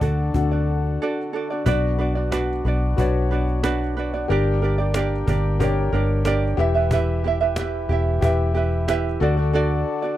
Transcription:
Already playing: D3 D4 F#4 A4 F#5
0.01 D2 D4 F#4 A4 D5, cajon bass
0.18 cajon slap
0.34 D2 D4 F#4 A4 F#5, cajon bass
0.51 D4 F#4 D5
0.67 cajon slap
0.84 cajon slap
1.02 D4 F#4 A4 D5
1.33 D4 F#4 A4 D5
1.50 D4 F#4 D5
1.65 B1 B3 D4 F#4 B4 D5, cajon bass
1.99 D4 F#4 B4 D5, cajon slap
2.15 D4 F#4 D5
2.32 D4 F#4 B4 D5, cajon slap
2.65 B1 D4 F#4 B4 D5, cajon slap
2.97 B1 D4 F#4 B4 C#5 D5, cajon bass
3.31 D4 F#4 B4 D5, cajon slap
3.48 cajon slap
3.63 D4 F#4 B4 D5, cajon slap
3.96 D4 F#4 B4 D5, cajon slap
4.13 D4 F#4 D5, cajon slap
4.28 G1 A#3 D4 G4 A#4 D5, cajon slap
4.62 D4 G4 A#4 D5, cajon slap
4.78 D4 G4 D5
4.94 D4 G4 A#4 D5, cajon slap
5.27 G1 D4 G4 A#4 D5, cajon bass
5.60 D4 G4 A#4 C#5 D5, cajon bass
5.92 G1 D4 G4 A#4 D5, cajon slap
6.09 cajon slap
6.25 D4 G4 A#4 D5, cajon slap
6.57 E1 E3 E4 G4 B4 E5, cajon slap
6.74 E4 B4 E5, cajon slap
6.91 E4 G4 B4 E5, cajon bass
7.24 E4 G4 E5, cajon slap
7.41 E4 B4 E5
7.56 E4 G4 B4 E5, cajon slap
7.89 E1 E4 G4 E5, cajon slap
8.21 E1 E4 G4 B4 E5, cajon bass
8.55 E4 G4 B4 E5, cajon slap
8.72 cajon slap
8.88 E4 G4 B4 E5, cajon slap
9.20 D2 D3 D4 F#4 A4 D5, cajon slap
9.37 D4 F#4 D5, cajon slap
9.53 D4 F#4 A4 D5
9.88 cajon slap
10.02 D4 F#4 D5, cajon slap

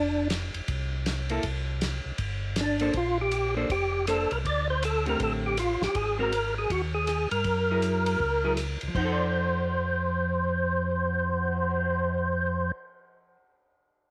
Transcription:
Already playing: F1 D4
0.30 snare, hi-hat pedal, ride
0.54 F1, ride
0.68 C2, kick, ride
1.06 snare, hi-hat pedal, ride
1.29 A#3 E4 A4, ride
1.43 C2, kick, ride
1.81 snare, hi-hat pedal, ride
2.05 C2
2.18 G1, kick, ride
2.56 snare, hi-hat pedal, ride
2.61 D4
2.80 A#3 D4 A4 C5, ride
2.93 A#1 F4, kick, ride
3.21 G4
3.31 hi-hat pedal, ride
3.57 A#3 D4 A4 C5
3.70 F1 G4, kick, ride
4.07 A#3 D4 A4 C5, cross-stick, hi-hat pedal, ride
4.31 C2 A#4, ride
4.45 D2 D5, kick, ride
4.70 C5
4.83 A4, hi-hat pedal, ride
5.06 D3 A3 C4 G4 A#4, ride
5.20 A1 A4, kick, ride
5.46 G4
5.57 F4, cross-stick, hi-hat pedal, ride
5.81 A1 G4, snare
5.95 G#1 G#4, kick, ride
6.19 G#3 C4 F#4 A#4
6.32 hi-hat pedal, ride
6.58 G#4
6.70 D#2 F#4, kick, ride
6.94 G#4
7.07 cross-stick, hi-hat pedal, ride
7.31 G2 A#4, ride
7.44 F#2, kick, ride
7.71 F#3 E4 G#4 A#4
7.82 hi-hat pedal, ride
8.06 ride
8.20 C#2, kick
8.44 F#3 E4 G#4 A#4
8.57 cross-stick, hi-hat pedal, ride
8.81 C#2, ride
8.88 F3
8.95 F2 D#4 C5, kick, crash
9.05 A4
9.12 D5
9.19 cymbal swell

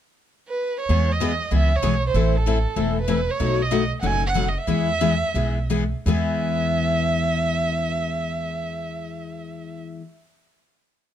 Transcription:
0.48 B4
0.80 C#5
0.89 E2 E3 G#3 B3 E4 G#4
1.12 D#5
1.20 E3 G#3 B3 E4 G#4
1.51 C#2 E3 G#3 B3 E4 G#4
1.56 E5
1.76 C#5
1.82 B1 E3 G#3 B3 E4 G#4
2.07 C5
2.14 A1 E3 A3 C4 E4 A4
2.36 A4
2.46 E3 A3 C4 E4 A4
2.76 E1 E3 A3 C4 E4 A4
3.01 B4
3.08 E3 A3 C4 E4 A4
3.31 C#5
3.40 B1 B2 F#3 A3 D#4 F#4
3.62 D#5
3.71 B2 F#3 A3 D#4 F#4
4.01 F#1 B2 F#3 A3 D#4 F#4 F#5
4.06 G#5
4.26 F#5
4.34 B2 F#3 A3 D#4 F#4
4.48 D#5
4.58 E5
4.67 E2 E3 G#3 B3 E4 G#4
5.01 E3 G#3 B3 E4 G#4
5.34 B1 E3 G#3 B3 E4 G#4
5.70 E3 G#3 B3 E4 G#4
6.06 E2 E3 G#3 B3 E4 G#4 E5

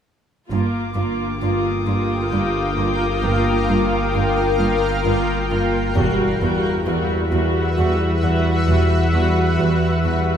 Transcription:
0.50 G1 G2 A#3 F4 A#4 F5 G5 D6
0.95 G2 A#3 F4
1.41 G2 A#3 F4 D#6
1.86 G2 A#3 F4
2.32 G2 A#3 F4
2.77 G2 A#3 F4
3.22 G1 G2 A#3 F4
3.67 G2 A#3 F4
4.13 G2 A#3 F4
4.58 G2 A#3 F4
5.04 G2 A#3 F4
5.50 G2 A#3 F4
5.95 E1 E2 G3 F#4 B4 E5 F#5
6.41 E2 G3 F#4
6.86 E2 G3 F#4
7.32 E2 G3 F#4
7.77 E2 G3 F#4
8.23 E2 G3 F#4
8.68 E1 E2 G3 F#4
9.13 E2 G3 F#4
9.59 E2 G3 F#4
10.04 E2 G3 F#4

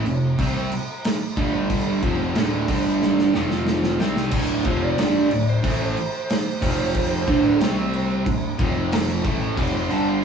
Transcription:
0.05 F1 F2 C3, crash
0.39 C2 C3 G3 C4, kick, crash
0.72 crash
1.04 snare, crash
1.37 G1 G2 D3 G3, kick, crash
1.70 kick, crash
2.02 F1 F2 C3 F3, kick, crash
2.35 D1 D2 A2 D3, snare, crash
2.68 G1 G2 D3 G3, kick, crash
3.02 snare
3.19 snare
3.34 F1 F2 C3 F3, snare
3.50 snare
3.67 snare
3.83 snare
3.99 C2 C3 G3 C4, snare
4.16 snare
4.31 D1 D2 A2 D3, kick, crash
4.64 F1 F2 C3 F3 C5, kick, crash
4.85 D5
4.98 G1 G2 D3 G3, snare, crash
5.30 D1 D2 A2, crash
5.49 C5
5.63 A1 A2 E3 A3, kick, crash
5.83 C5
5.97 crash
6.30 C5, snare, crash
6.61 F1 F2 C3 F3, kick, crash
6.94 kick, crash
7.26 D1 D2 A2 D3, kick, crash
7.59 C2 C3 G3 C4, snare, crash
7.93 crash
8.26 D1 D2 A2, kick, crash
8.58 F1 F2 C3 F3, kick, crash
8.92 snare, crash
9.23 A1 A2 E3 A3, kick, crash
9.56 F1 F2 C3 F3 D6, kick, crash
9.76 C6
9.89 G1 G2 D3 G3, crash
9.93 A5
10.09 C6

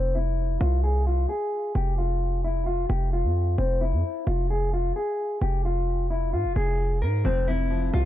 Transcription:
Already playing: F1 C4
0.15 E4
0.61 C2 F4
0.84 G#4
1.07 F4
1.29 G#4
1.75 F1 G4
1.98 F4
2.44 E4
2.67 F4
2.90 F1 G4
3.13 F4
3.24 F2
3.58 F1 C4
3.81 E4
3.93 F2
4.27 F1 F4
4.50 G#4
4.73 F4
4.96 G#4
5.41 F1 G4
5.65 F4
6.11 E4
6.33 G#2 F4
6.45 F1
6.56 F1 G#4
7.02 G#2 A#4
7.25 F1 F2 C4
7.48 F2 E4
7.71 F3
7.93 C2 C3 F4

